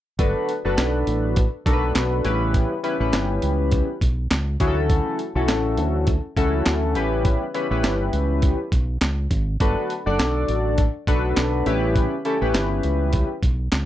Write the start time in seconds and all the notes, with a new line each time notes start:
0.19 G1 D4 F#4 A4 B4, kick, closed hi-hat
0.49 closed hi-hat
0.65 F#1 D4 F#4 A4 B4
0.78 B1, snare, clap, closed hi-hat
1.07 A1, closed hi-hat
1.36 kick, closed hi-hat
1.66 B1 D4 F#4 A4 A#4, kick, closed hi-hat
1.73 B4
1.95 B1, snare, clap, closed hi-hat
2.24 A1 C#4 E4 G4 B4, closed hi-hat
2.54 kick, closed hi-hat
2.83 C#4 E4 G4 B4, closed hi-hat
3.00 A1 C#4 E4 G4 B4
3.13 G1, snare, clap, closed hi-hat
3.42 C#2, closed hi-hat
3.71 kick, closed hi-hat
4.01 B1, kick, closed hi-hat
4.31 C#2, snare, clap, closed hi-hat
4.60 D2 C#4 E4 F#4 G#4, kick, closed hi-hat
4.67 A4
4.90 kick, closed hi-hat
5.19 closed hi-hat
5.35 B1 C#4 E4 F#4 A4
5.48 A1, snare, clap, closed hi-hat
5.77 D2, closed hi-hat
6.07 kick, closed hi-hat
6.36 C#2 C#4 E4 F#4 A4, kick, closed hi-hat
6.66 D2, snare, clap, closed hi-hat
6.95 A1 C#4 E4 G4 B4, closed hi-hat
7.25 kick, closed hi-hat
7.54 C#4 E4 G4 B4, closed hi-hat
7.71 A1 C#4 E4 G4 B4
7.84 G1, snare, clap, closed hi-hat
8.13 C#2, closed hi-hat
8.42 kick, closed hi-hat
8.72 B1, kick, closed hi-hat
9.01 C#2, snare, clap, closed hi-hat
9.31 G#1, kick, closed hi-hat
9.60 G1 D4 F#4 A4 B4, kick, closed hi-hat
9.90 closed hi-hat
10.06 F#1 D4 F#4 A4 D5
10.19 B1, snare, clap, closed hi-hat
10.48 A1, closed hi-hat
10.78 kick, closed hi-hat
11.07 B1 D4 F#4 A4 B4, kick, closed hi-hat
11.37 B1, snare, clap, closed hi-hat
11.66 A1 C#4 E4 G4 B4, closed hi-hat
11.96 kick, closed hi-hat
12.25 C#4 E4 G4 A4, closed hi-hat
12.41 A1 C#4 E4 G4 B4
12.54 G1, snare, clap, closed hi-hat
12.83 C#2, closed hi-hat
13.13 kick, closed hi-hat
13.43 B1, kick, closed hi-hat
13.72 C#2, snare, clap, closed hi-hat